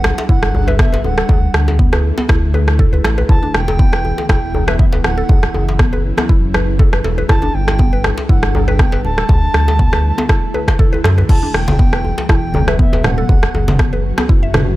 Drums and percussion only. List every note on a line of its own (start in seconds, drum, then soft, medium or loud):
0.04 cross-stick loud
0.04 djembe tone loud
0.18 djembe slap medium
0.29 kick loud
0.43 cross-stick medium
0.43 djembe tone medium
0.55 djembe bass medium
0.68 djembe tone loud
0.79 kick loud
0.79 cross-stick loud
0.94 djembe slap medium
1.04 djembe tone medium
1.18 cross-stick medium
1.29 kick loud
1.29 djembe tone medium
1.29 djembe bass medium
1.54 cross-stick medium
1.68 djembe slap medium
1.68 djembe tone medium
1.79 kick loud
1.93 cross-stick medium
1.93 djembe tone loud
2.18 djembe slap medium
2.29 kick loud
2.29 cross-stick loud
2.29 djembe tone medium
2.54 djembe tone medium
2.68 cross-stick medium
2.79 kick loud
2.94 djembe tone medium
3.04 cross-stick medium
3.04 djembe slap medium
3.18 djembe tone medium
3.29 kick loud
3.29 djembe bass medium
3.43 djembe tone medium
3.54 cross-stick medium
3.68 djembe slap medium
3.68 djembe tone medium
3.79 kick loud
3.93 cross-stick medium
4.05 djembe tone medium
4.18 djembe slap medium
4.29 kick loud
4.29 cross-stick loud
4.29 djembe tone medium
4.55 djembe bass medium
4.68 cross-stick medium
4.68 djembe tone medium
4.79 kick loud
4.93 djembe slap medium
4.93 djembe tone loud
5.04 cross-stick medium
5.29 kick loud
5.29 djembe tone medium
5.29 djembe bass medium
5.43 cross-stick medium
5.54 djembe tone medium
5.69 djembe slap medium
5.79 kick loud
5.79 cross-stick medium
5.93 djembe tone medium
6.18 cross-stick medium
6.18 djembe slap medium
6.18 djembe tone medium
6.29 kick loud
6.54 cross-stick medium
6.54 djembe tone medium
6.79 kick loud
6.79 djembe tone medium
6.93 cross-stick medium
7.04 djembe slap medium
7.18 djembe tone medium
7.29 kick loud
7.29 cross-stick medium
7.29 djembe bass medium
7.42 djembe tone medium
7.68 cross-stick medium
7.68 djembe slap medium
7.79 kick loud
7.79 djembe tone medium
8.04 cross-stick medium
8.04 djembe tone loud
8.18 djembe slap medium
8.29 kick loud
8.43 cross-stick medium
8.43 djembe tone medium
8.55 djembe bass loud
8.68 djembe tone medium
8.79 kick loud
8.79 cross-stick medium
8.92 djembe slap medium
9.05 djembe tone medium
9.18 cross-stick medium
9.29 kick loud
9.29 djembe tone medium
9.29 djembe bass loud
9.54 cross-stick medium
9.68 djembe slap medium
9.68 djembe tone medium
9.79 kick loud
9.93 cross-stick medium
9.93 djembe tone medium
10.18 djembe slap medium
10.29 kick loud
10.29 cross-stick medium
10.29 djembe tone medium
10.54 djembe tone medium
10.68 kick medium
10.68 cross-stick medium
10.68 djembe slap medium
10.79 kick loud
10.94 djembe tone medium
11.04 cross-stick medium
11.04 djembe slap medium
11.18 djembe tone medium
11.29 kick loud
11.29 crash medium
11.29 djembe bass medium
11.43 djembe tone medium
11.54 cross-stick medium
11.68 djembe slap medium
11.68 djembe tone loud
11.68 high conga medium
11.79 kick loud
11.93 cross-stick medium
12.05 djembe tone medium
12.18 djembe slap medium
12.29 kick loud
12.29 cross-stick medium
12.29 djembe tone medium
12.54 high conga medium
12.54 djembe bass loud
12.68 cross-stick medium
12.68 djembe tone medium
12.79 kick loud
12.93 djembe slap medium
12.93 djembe tone medium
13.04 cross-stick medium
13.04 high conga medium
13.04 low conga loud
13.29 kick loud
13.29 djembe tone medium
13.29 djembe bass medium
13.43 cross-stick medium
13.55 djembe tone medium
13.68 djembe slap medium
13.68 high conga loud
13.79 kick loud
13.79 cross-stick medium
13.93 djembe tone medium
14.18 cross-stick medium
14.18 djembe slap medium
14.18 djembe tone loud
14.29 kick loud
14.54 cross-stick loud
14.54 djembe tone medium
14.54 high conga loud
14.54 low conga loud